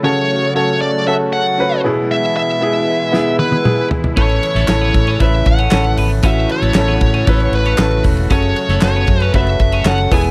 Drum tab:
RD |----------------|----------------|xxxxx-xxx-xxxxxx|x-xxx-xxxxxxxxxx|
HH |----------------|----------------|--------------o-|p-------------o-|
CP |----------------|----------------|----x-------x---|----x-------x---|
SD |----------------|--------o-------|---oo-------o---|----o-------o---|
T1 |----------------|----------oo----|----------------|----------------|
T2 |----------------|------------o---|----------------|----------------|
FT |----------------|--------------oo|----------------|----------------|
BD |----------------|----------------|o-----o-o-o-----|o-----o-o-----o-|

RD |xxxxx-xxxxxxxxxx|
HH |p-------------o-|
CP |----x-------x---|
SD |---oo-------o---|
T1 |----------------|
T2 |----------------|
FT |----------------|
BD |o-----o-o-o---o-|